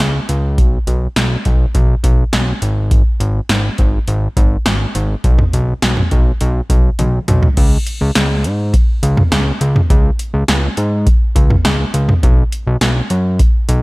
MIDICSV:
0, 0, Header, 1, 3, 480
1, 0, Start_track
1, 0, Tempo, 582524
1, 478, Time_signature, 4, 2, 24, 8
1, 11390, End_track
2, 0, Start_track
2, 0, Title_t, "Analog synth bass"
2, 0, Program_c, 0, 38
2, 0, Note_on_c, 0, 37, 106
2, 165, Note_off_c, 0, 37, 0
2, 238, Note_on_c, 0, 37, 99
2, 478, Note_on_c, 0, 35, 107
2, 491, Note_off_c, 0, 37, 0
2, 646, Note_off_c, 0, 35, 0
2, 718, Note_on_c, 0, 35, 99
2, 886, Note_off_c, 0, 35, 0
2, 959, Note_on_c, 0, 35, 105
2, 1127, Note_off_c, 0, 35, 0
2, 1201, Note_on_c, 0, 35, 99
2, 1368, Note_off_c, 0, 35, 0
2, 1439, Note_on_c, 0, 35, 113
2, 1607, Note_off_c, 0, 35, 0
2, 1678, Note_on_c, 0, 35, 102
2, 1846, Note_off_c, 0, 35, 0
2, 1920, Note_on_c, 0, 35, 103
2, 2087, Note_off_c, 0, 35, 0
2, 2159, Note_on_c, 0, 32, 96
2, 2495, Note_off_c, 0, 32, 0
2, 2638, Note_on_c, 0, 32, 99
2, 2806, Note_off_c, 0, 32, 0
2, 2879, Note_on_c, 0, 32, 110
2, 3046, Note_off_c, 0, 32, 0
2, 3121, Note_on_c, 0, 32, 99
2, 3288, Note_off_c, 0, 32, 0
2, 3360, Note_on_c, 0, 32, 108
2, 3527, Note_off_c, 0, 32, 0
2, 3598, Note_on_c, 0, 32, 103
2, 3766, Note_off_c, 0, 32, 0
2, 3840, Note_on_c, 0, 32, 105
2, 4007, Note_off_c, 0, 32, 0
2, 4079, Note_on_c, 0, 32, 102
2, 4247, Note_off_c, 0, 32, 0
2, 4319, Note_on_c, 0, 35, 108
2, 4487, Note_off_c, 0, 35, 0
2, 4559, Note_on_c, 0, 35, 100
2, 4726, Note_off_c, 0, 35, 0
2, 4799, Note_on_c, 0, 35, 101
2, 4967, Note_off_c, 0, 35, 0
2, 5041, Note_on_c, 0, 35, 96
2, 5208, Note_off_c, 0, 35, 0
2, 5281, Note_on_c, 0, 35, 106
2, 5448, Note_off_c, 0, 35, 0
2, 5518, Note_on_c, 0, 35, 97
2, 5686, Note_off_c, 0, 35, 0
2, 5759, Note_on_c, 0, 35, 103
2, 5927, Note_off_c, 0, 35, 0
2, 5999, Note_on_c, 0, 35, 108
2, 6167, Note_off_c, 0, 35, 0
2, 6240, Note_on_c, 0, 37, 102
2, 6407, Note_off_c, 0, 37, 0
2, 6600, Note_on_c, 0, 37, 104
2, 6683, Note_off_c, 0, 37, 0
2, 6719, Note_on_c, 0, 37, 105
2, 6960, Note_on_c, 0, 44, 85
2, 6972, Note_off_c, 0, 37, 0
2, 7211, Note_off_c, 0, 44, 0
2, 7439, Note_on_c, 0, 37, 100
2, 7607, Note_off_c, 0, 37, 0
2, 7679, Note_on_c, 0, 37, 109
2, 7847, Note_off_c, 0, 37, 0
2, 7918, Note_on_c, 0, 37, 107
2, 8086, Note_off_c, 0, 37, 0
2, 8159, Note_on_c, 0, 37, 115
2, 8327, Note_off_c, 0, 37, 0
2, 8518, Note_on_c, 0, 37, 96
2, 8602, Note_off_c, 0, 37, 0
2, 8638, Note_on_c, 0, 37, 106
2, 8806, Note_off_c, 0, 37, 0
2, 8878, Note_on_c, 0, 44, 94
2, 9130, Note_off_c, 0, 44, 0
2, 9357, Note_on_c, 0, 37, 98
2, 9526, Note_off_c, 0, 37, 0
2, 9598, Note_on_c, 0, 37, 105
2, 9766, Note_off_c, 0, 37, 0
2, 9837, Note_on_c, 0, 37, 102
2, 10006, Note_off_c, 0, 37, 0
2, 10079, Note_on_c, 0, 35, 116
2, 10247, Note_off_c, 0, 35, 0
2, 10437, Note_on_c, 0, 35, 103
2, 10522, Note_off_c, 0, 35, 0
2, 10558, Note_on_c, 0, 35, 105
2, 10726, Note_off_c, 0, 35, 0
2, 10797, Note_on_c, 0, 42, 90
2, 11050, Note_off_c, 0, 42, 0
2, 11277, Note_on_c, 0, 35, 110
2, 11390, Note_off_c, 0, 35, 0
2, 11390, End_track
3, 0, Start_track
3, 0, Title_t, "Drums"
3, 0, Note_on_c, 9, 38, 108
3, 0, Note_on_c, 9, 42, 75
3, 80, Note_off_c, 9, 38, 0
3, 80, Note_off_c, 9, 42, 0
3, 238, Note_on_c, 9, 42, 82
3, 321, Note_off_c, 9, 42, 0
3, 479, Note_on_c, 9, 36, 114
3, 479, Note_on_c, 9, 42, 66
3, 561, Note_off_c, 9, 36, 0
3, 562, Note_off_c, 9, 42, 0
3, 720, Note_on_c, 9, 42, 69
3, 802, Note_off_c, 9, 42, 0
3, 958, Note_on_c, 9, 42, 85
3, 959, Note_on_c, 9, 38, 114
3, 1040, Note_off_c, 9, 42, 0
3, 1041, Note_off_c, 9, 38, 0
3, 1197, Note_on_c, 9, 42, 61
3, 1200, Note_on_c, 9, 36, 89
3, 1279, Note_off_c, 9, 42, 0
3, 1283, Note_off_c, 9, 36, 0
3, 1439, Note_on_c, 9, 36, 89
3, 1439, Note_on_c, 9, 42, 68
3, 1521, Note_off_c, 9, 36, 0
3, 1522, Note_off_c, 9, 42, 0
3, 1678, Note_on_c, 9, 36, 88
3, 1680, Note_on_c, 9, 42, 81
3, 1761, Note_off_c, 9, 36, 0
3, 1762, Note_off_c, 9, 42, 0
3, 1919, Note_on_c, 9, 38, 111
3, 1919, Note_on_c, 9, 42, 75
3, 2001, Note_off_c, 9, 38, 0
3, 2001, Note_off_c, 9, 42, 0
3, 2159, Note_on_c, 9, 42, 84
3, 2241, Note_off_c, 9, 42, 0
3, 2399, Note_on_c, 9, 42, 67
3, 2400, Note_on_c, 9, 36, 120
3, 2482, Note_off_c, 9, 36, 0
3, 2482, Note_off_c, 9, 42, 0
3, 2640, Note_on_c, 9, 42, 70
3, 2723, Note_off_c, 9, 42, 0
3, 2879, Note_on_c, 9, 38, 113
3, 2879, Note_on_c, 9, 42, 84
3, 2961, Note_off_c, 9, 42, 0
3, 2962, Note_off_c, 9, 38, 0
3, 3116, Note_on_c, 9, 42, 61
3, 3121, Note_on_c, 9, 36, 85
3, 3199, Note_off_c, 9, 42, 0
3, 3203, Note_off_c, 9, 36, 0
3, 3358, Note_on_c, 9, 42, 64
3, 3441, Note_off_c, 9, 42, 0
3, 3598, Note_on_c, 9, 36, 89
3, 3599, Note_on_c, 9, 42, 80
3, 3681, Note_off_c, 9, 36, 0
3, 3682, Note_off_c, 9, 42, 0
3, 3837, Note_on_c, 9, 38, 110
3, 3838, Note_on_c, 9, 42, 75
3, 3920, Note_off_c, 9, 38, 0
3, 3920, Note_off_c, 9, 42, 0
3, 4079, Note_on_c, 9, 42, 84
3, 4161, Note_off_c, 9, 42, 0
3, 4319, Note_on_c, 9, 36, 112
3, 4319, Note_on_c, 9, 42, 67
3, 4401, Note_off_c, 9, 42, 0
3, 4402, Note_off_c, 9, 36, 0
3, 4437, Note_on_c, 9, 45, 93
3, 4520, Note_off_c, 9, 45, 0
3, 4560, Note_on_c, 9, 42, 72
3, 4643, Note_off_c, 9, 42, 0
3, 4798, Note_on_c, 9, 42, 86
3, 4799, Note_on_c, 9, 38, 114
3, 4881, Note_off_c, 9, 38, 0
3, 4881, Note_off_c, 9, 42, 0
3, 4919, Note_on_c, 9, 45, 94
3, 5001, Note_off_c, 9, 45, 0
3, 5037, Note_on_c, 9, 42, 62
3, 5041, Note_on_c, 9, 36, 85
3, 5120, Note_off_c, 9, 42, 0
3, 5123, Note_off_c, 9, 36, 0
3, 5279, Note_on_c, 9, 42, 65
3, 5361, Note_off_c, 9, 42, 0
3, 5518, Note_on_c, 9, 36, 88
3, 5519, Note_on_c, 9, 42, 80
3, 5601, Note_off_c, 9, 36, 0
3, 5602, Note_off_c, 9, 42, 0
3, 5758, Note_on_c, 9, 42, 73
3, 5759, Note_on_c, 9, 48, 57
3, 5841, Note_off_c, 9, 42, 0
3, 5841, Note_off_c, 9, 48, 0
3, 5999, Note_on_c, 9, 42, 86
3, 5999, Note_on_c, 9, 45, 91
3, 6082, Note_off_c, 9, 42, 0
3, 6082, Note_off_c, 9, 45, 0
3, 6119, Note_on_c, 9, 43, 89
3, 6201, Note_off_c, 9, 43, 0
3, 6238, Note_on_c, 9, 49, 103
3, 6239, Note_on_c, 9, 36, 115
3, 6239, Note_on_c, 9, 42, 70
3, 6321, Note_off_c, 9, 42, 0
3, 6321, Note_off_c, 9, 49, 0
3, 6322, Note_off_c, 9, 36, 0
3, 6481, Note_on_c, 9, 42, 73
3, 6564, Note_off_c, 9, 42, 0
3, 6718, Note_on_c, 9, 42, 89
3, 6719, Note_on_c, 9, 38, 123
3, 6801, Note_off_c, 9, 38, 0
3, 6801, Note_off_c, 9, 42, 0
3, 6958, Note_on_c, 9, 42, 61
3, 7040, Note_off_c, 9, 42, 0
3, 7199, Note_on_c, 9, 36, 97
3, 7200, Note_on_c, 9, 42, 69
3, 7281, Note_off_c, 9, 36, 0
3, 7282, Note_off_c, 9, 42, 0
3, 7440, Note_on_c, 9, 42, 85
3, 7522, Note_off_c, 9, 42, 0
3, 7559, Note_on_c, 9, 45, 112
3, 7641, Note_off_c, 9, 45, 0
3, 7678, Note_on_c, 9, 38, 119
3, 7679, Note_on_c, 9, 42, 80
3, 7761, Note_off_c, 9, 38, 0
3, 7761, Note_off_c, 9, 42, 0
3, 7919, Note_on_c, 9, 42, 84
3, 8001, Note_off_c, 9, 42, 0
3, 8040, Note_on_c, 9, 45, 98
3, 8123, Note_off_c, 9, 45, 0
3, 8159, Note_on_c, 9, 36, 120
3, 8159, Note_on_c, 9, 42, 70
3, 8241, Note_off_c, 9, 36, 0
3, 8242, Note_off_c, 9, 42, 0
3, 8399, Note_on_c, 9, 42, 73
3, 8482, Note_off_c, 9, 42, 0
3, 8638, Note_on_c, 9, 42, 89
3, 8639, Note_on_c, 9, 38, 118
3, 8721, Note_off_c, 9, 38, 0
3, 8721, Note_off_c, 9, 42, 0
3, 8876, Note_on_c, 9, 42, 66
3, 8959, Note_off_c, 9, 42, 0
3, 9118, Note_on_c, 9, 36, 96
3, 9119, Note_on_c, 9, 42, 68
3, 9201, Note_off_c, 9, 36, 0
3, 9201, Note_off_c, 9, 42, 0
3, 9358, Note_on_c, 9, 36, 93
3, 9359, Note_on_c, 9, 42, 84
3, 9440, Note_off_c, 9, 36, 0
3, 9441, Note_off_c, 9, 42, 0
3, 9479, Note_on_c, 9, 45, 110
3, 9561, Note_off_c, 9, 45, 0
3, 9598, Note_on_c, 9, 38, 115
3, 9598, Note_on_c, 9, 42, 81
3, 9680, Note_off_c, 9, 38, 0
3, 9681, Note_off_c, 9, 42, 0
3, 9839, Note_on_c, 9, 42, 86
3, 9921, Note_off_c, 9, 42, 0
3, 9960, Note_on_c, 9, 45, 97
3, 10042, Note_off_c, 9, 45, 0
3, 10079, Note_on_c, 9, 36, 120
3, 10079, Note_on_c, 9, 42, 70
3, 10161, Note_off_c, 9, 36, 0
3, 10162, Note_off_c, 9, 42, 0
3, 10320, Note_on_c, 9, 42, 73
3, 10402, Note_off_c, 9, 42, 0
3, 10557, Note_on_c, 9, 38, 120
3, 10557, Note_on_c, 9, 42, 88
3, 10639, Note_off_c, 9, 42, 0
3, 10640, Note_off_c, 9, 38, 0
3, 10795, Note_on_c, 9, 42, 65
3, 10878, Note_off_c, 9, 42, 0
3, 11037, Note_on_c, 9, 42, 69
3, 11038, Note_on_c, 9, 36, 97
3, 11119, Note_off_c, 9, 42, 0
3, 11120, Note_off_c, 9, 36, 0
3, 11278, Note_on_c, 9, 42, 83
3, 11360, Note_off_c, 9, 42, 0
3, 11390, End_track
0, 0, End_of_file